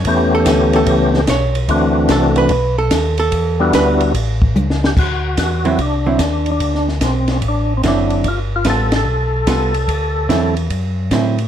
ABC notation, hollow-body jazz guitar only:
X:1
M:4/4
L:1/8
Q:"Swing" 1/4=146
K:Dmix
V:1 name="Hollow-body jazz guitar"
^c A2 A3 c z | z2 A B2 A2 A- | A2 B z4 z | z3 [D,F,CE] z [D,F,CE] z2 |
z6 [D,F,CE]2 | z2 [G,B,=FA] z3 [G,B,FA] z | z2 [D,F,CE] z3 [D,F,CE] z |]